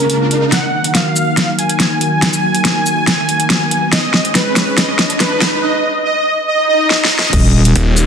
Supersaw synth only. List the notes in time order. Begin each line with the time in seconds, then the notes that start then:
Already playing: A#4
0.52 F#5
0.95 F5
1.58 G#5
3.92 D#5
4.35 B4
4.78 D#5
5.20 B4
5.63 D#5
6.05 D#5
6.48 D#5
6.69 D#5
6.90 D#5
7.12 D#5